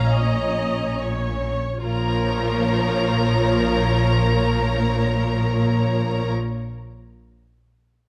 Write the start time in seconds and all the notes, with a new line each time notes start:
Already playing: A#1 A#2 C#4 C#5 F5 A#5
0.11 D#5
0.97 C#5
1.83 A#1 A#2 F3 F4 A#4 C#5 A#5